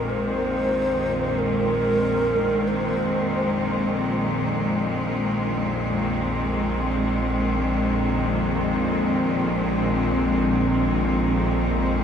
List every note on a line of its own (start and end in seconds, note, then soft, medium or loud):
0.00 12.04 A#1 medium
0.00 12.04 F2 medium
0.00 12.04 A#2 medium
0.00 12.04 D#3 medium
0.00 12.04 G#3 medium
0.00 12.04 C4 medium
0.00 0.11 A#4 loud
0.10 1.40 C5 loud
1.39 2.69 A#4 loud
2.68 3.64 C5 medium